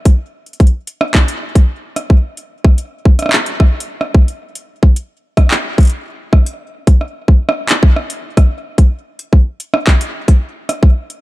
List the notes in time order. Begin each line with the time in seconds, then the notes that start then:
0.05 kick, closed hi-hat
0.46 closed hi-hat
0.53 closed hi-hat
0.60 kick, closed hi-hat
0.67 closed hi-hat
0.87 closed hi-hat
1.01 cross-stick
1.15 kick, clap
1.28 closed hi-hat
1.55 kick, closed hi-hat
1.96 cross-stick, closed hi-hat
2.10 kick
2.37 closed hi-hat
2.64 kick, cross-stick
2.78 closed hi-hat
3.05 kick
3.19 cross-stick, closed hi-hat
3.22 cross-stick
3.26 cross-stick
3.29 cross-stick, clap
3.46 closed hi-hat
3.60 kick, cross-stick
3.80 closed hi-hat
4.01 cross-stick
4.14 kick
4.28 closed hi-hat
4.55 closed hi-hat
4.83 kick
4.96 closed hi-hat
5.37 kick, cross-stick, closed hi-hat
5.51 clap
5.78 kick, closed hi-hat
5.80 closed hi-hat
5.83 closed hi-hat
5.85 closed hi-hat
5.87 closed hi-hat
5.90 closed hi-hat
6.33 kick, cross-stick
6.46 closed hi-hat
6.87 kick, closed hi-hat
7.01 cross-stick
7.28 kick
7.49 cross-stick
7.69 clap, closed hi-hat
7.83 kick
7.96 cross-stick
8.10 closed hi-hat
8.37 kick, cross-stick, closed hi-hat
8.78 kick, closed hi-hat
9.19 closed hi-hat
9.33 kick
9.60 closed hi-hat
9.74 cross-stick
9.87 kick, clap
10.01 closed hi-hat
10.28 kick, closed hi-hat
10.69 cross-stick, closed hi-hat
10.83 kick
11.10 closed hi-hat